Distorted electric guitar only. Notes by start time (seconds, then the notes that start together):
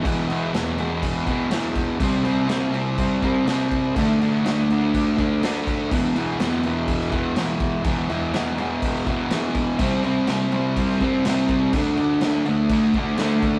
0.03 E2 B2 E3
0.28 B2 E3
0.53 E2 B2 E3
0.78 B2 E3
1.27 B2 E3
1.50 E2 B2 E3
1.99 C3 G3 C4
2.23 G3 C4
2.48 C3 G3 C4
2.72 G3 C4
3.22 G3 C4
3.46 C3 G3 C4
3.96 D3 A3 D4
4.20 A3 D4
4.45 D3 A3 D4
4.70 A3 D4
5.17 A3 D4
5.42 D3 A3 D4
5.91 E2 B2 E3
6.15 B2 E3
6.39 E2 B2 E3
6.63 B2 E3
7.11 B2 E3
7.36 E2 B2 E3
7.84 E2 B2 E3
8.09 B2 E3
8.34 E2 B2 E3
8.59 B2 E3
9.07 B2 E3
9.31 E2 B2 E3
9.79 C3 G3 C4
10.05 G3 C4
10.29 C3 G3 C4
10.53 G3 C4
11.01 G3 C4
11.26 C3 G3 C4
11.74 D3 A3 D4
11.97 A3 D4
12.22 D3 A3 D4
12.46 A3 D4
12.95 A3 D4
13.18 D3 A3 D4